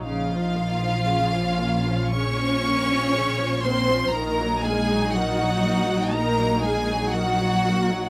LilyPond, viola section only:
\new Staff \with { instrumentName = "Viola section" } { \clef bass \time 4/4 \key bes \minor \tempo 4 = 60 << { ees'4 des'2. | ees'1 | } \\ { des16 f16 bes16 f16 des16 f16 bes16 f16 des16 f16 bes16 f16 des16 f16 bes16 f16 | ees16 ges16 bes16 ges16 ees16 ges16 bes16 ges16 ees16 ges16 bes16 ges16 ees16 ges16 bes16 ges16 | } >> }